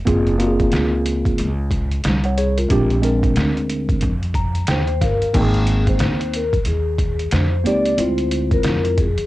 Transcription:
0.05 upright bass F#1, tine electric piano A#3 C4 F4 G#4, kick, closed hi-hat
0.27 closed hi-hat
0.38 tine electric piano A#3 C4 F4 F#4, closed hi-hat
0.47 tine electric piano G#4
0.60 kick, closed hi-hat
0.72 upright bass C#2, snare, closed hi-hat
1.06 closed hi-hat
1.25 kick, closed hi-hat
1.38 upright bass C#2, closed hi-hat
1.71 kick, closed hi-hat
1.91 closed hi-hat
2.04 upright bass C2, snare, closed hi-hat
2.24 tine electric piano C#5 F#5, closed hi-hat
2.38 tine electric piano G#4 C#5, closed hi-hat
2.58 tine electric piano F4 A#4, closed hi-hat
2.69 upright bass A#1, tine electric piano G#3 C4 D4 G4, kick, closed hi-hat
2.90 closed hi-hat
3.02 tine electric piano G#3 C4 D4 A#4, closed hi-hat
3.23 kick, closed hi-hat
3.36 upright bass D2, snare, closed hi-hat
3.57 closed hi-hat
3.70 closed hi-hat
3.89 kick, closed hi-hat
4.01 upright bass F2, kick, closed hi-hat
4.23 closed hi-hat
4.34 tine electric piano A#5, kick, closed hi-hat
4.55 closed hi-hat
4.67 upright bass D#2, tine electric piano G5, snare, closed hi-hat
4.71 vibraphone C5
4.87 closed hi-hat
5.01 upright bass G1, vibraphone A#4, tine electric piano F5, kick, snare, closed hi-hat
5.22 closed hi-hat
5.34 upright bass G#1, tine electric piano A#3 C4 D#4 G5, vibraphone G#4, kick, closed hi-hat, crash
5.54 closed hi-hat
5.67 closed hi-hat
5.87 vibraphone C5, kick, closed hi-hat
5.99 upright bass D#2, snare, closed hi-hat
6.21 closed hi-hat
6.34 vibraphone A#4, closed hi-hat
6.53 kick, closed hi-hat
6.65 upright bass D#2, vibraphone G#4, closed hi-hat
6.98 kick, closed hi-hat
7.19 closed hi-hat
7.31 upright bass F2, vibraphone C5, snare, closed hi-hat
7.64 upright bass C#2, tine electric piano A#3 C4 D#4 G4, vibraphone D5, closed hi-hat
7.86 closed hi-hat
7.97 upright bass D2, tine electric piano G#3 C4 E4 F4, vibraphone C5, closed hi-hat
8.18 closed hi-hat
8.31 closed hi-hat
8.51 vibraphone A#4, kick, closed hi-hat
8.63 upright bass F2, snare, closed hi-hat
8.85 closed hi-hat
8.98 vibraphone G#4, kick, closed hi-hat
9.17 muted upright bass stroke, closed hi-hat

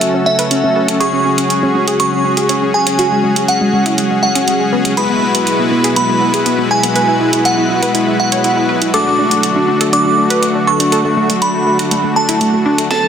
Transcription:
Already playing: analog synth pad C#3 F#3 A3 F#4 A4, supersaw synth C#4 F#4 A4, synth bell E5
0.01 synth pluck C#4, closed hi-hat
0.14 synth pluck C#4
0.26 synth pluck C#4, synth bell E5
0.39 synth pluck B4, closed hi-hat
0.51 synth pluck C#4, closed hi-hat
0.64 synth pluck C#4
0.76 synth pluck A4
0.88 synth pluck C#4, closed hi-hat
1.00 analog synth pad G#3 F#4 G#4, supersaw synth C#4 F#4 G#4, synth pluck G#4, synth bell C#6, closed hi-hat
1.13 synth pluck C#4
1.25 synth pluck C#4
1.38 synth pluck C#4, closed hi-hat
1.50 closed hi-hat
1.63 synth pluck C#4
1.75 synth pluck C#4
1.88 synth pluck G#4, closed hi-hat
2.00 synth pluck C#4, synth bell C#6, closed hi-hat
2.12 synth pluck C#4
2.25 synth pluck C#4
2.37 synth pluck G#4, closed hi-hat
2.49 synth pluck C#4, closed hi-hat
2.62 synth pluck C#4
2.74 synth pluck G#4, synth bell G#5
2.87 synth pluck C#4, closed hi-hat
2.99 synth pluck F#4, closed hi-hat
3.12 synth pluck G#3
3.24 synth pluck G#3
3.36 synth pluck G#3, closed hi-hat
3.48 synth bell F#5, closed hi-hat
3.61 synth pluck G#3
3.73 synth pluck G#3
3.86 synth pluck E4, closed hi-hat
3.98 synth pluck G#3, closed hi-hat
4.11 synth pluck G#3
4.23 synth pluck G#3, synth bell F#5
4.35 synth pluck C#4, closed hi-hat
4.48 synth pluck G#3, closed hi-hat
4.60 synth pluck G#3
4.72 synth pluck B3
4.85 synth pluck G#3, closed hi-hat
4.97 analog synth pad B2 F#3 E4, supersaw synth G#3 B3 E4 F#4 B4, synth pluck G#4, synth bell B5, closed hi-hat
5.10 synth pluck B3
5.22 synth pluck B3
5.35 synth pluck B3, closed hi-hat
5.47 closed hi-hat
5.59 synth pluck B3
5.72 synth pluck B3
5.84 synth pluck G#4, closed hi-hat
5.96 synth pluck B3, synth bell B5, closed hi-hat
6.09 synth pluck B3
6.21 synth pluck B3
6.34 synth pluck G#4, closed hi-hat
6.46 synth pluck B3, closed hi-hat
6.59 synth pluck B3
6.71 synth pluck G#4, synth bell G#5
6.83 synth pluck B3, closed hi-hat
6.96 synth pluck B4, closed hi-hat
7.08 synth pluck E4
7.20 synth pluck E4
7.33 synth pluck E4, closed hi-hat
7.45 synth bell F#5, closed hi-hat
7.58 synth pluck E4
7.70 synth pluck E4
7.83 synth pluck B4, closed hi-hat
7.95 synth pluck E4, closed hi-hat
8.07 synth pluck E4
8.19 synth pluck E4, synth bell F#5
8.32 synth pluck C#5, closed hi-hat
8.44 synth pluck E4, closed hi-hat
8.57 synth pluck E4
8.69 synth pluck B4
8.82 synth pluck E4, closed hi-hat
8.94 analog synth pad D3 F#3 A3 F#4 A4, supersaw synth A3 D4 F#4, synth pluck A4, synth bell D6, closed hi-hat
9.06 synth pluck D4
9.19 synth pluck D4
9.31 synth pluck D4, closed hi-hat
9.43 closed hi-hat
9.56 synth pluck D4
9.68 synth pluck D4
9.81 synth pluck A4, closed hi-hat
9.93 synth pluck D4, synth bell D6, closed hi-hat
10.06 synth pluck D4
10.18 synth pluck D4
10.30 synth pluck B4, closed hi-hat
10.43 synth pluck D4, closed hi-hat
10.55 synth pluck D4
10.67 synth pluck A4, synth bell C#6
10.80 synth pluck D4, closed hi-hat
10.92 synth pluck A4, closed hi-hat
11.05 synth pluck A3
11.17 synth pluck A3
11.30 synth pluck A3, closed hi-hat
11.42 synth bell B5, closed hi-hat
11.54 synth pluck A3
11.67 synth pluck A3
11.79 synth pluck F#4, closed hi-hat
11.91 synth pluck A3, closed hi-hat
12.04 synth pluck A3
12.16 synth pluck A3, synth bell A5
12.29 synth pluck E4, closed hi-hat
12.41 synth pluck A3, closed hi-hat
12.54 synth pluck A3
12.66 synth pluck D4
12.78 synth pluck A3, closed hi-hat
12.90 analog synth pad C#3 F#3 A3 F#4 A4, synth pluck F#4, synth bell A4 A5, digital synth lead A5, snare, closed hi-hat
13.03 synth pluck F#3

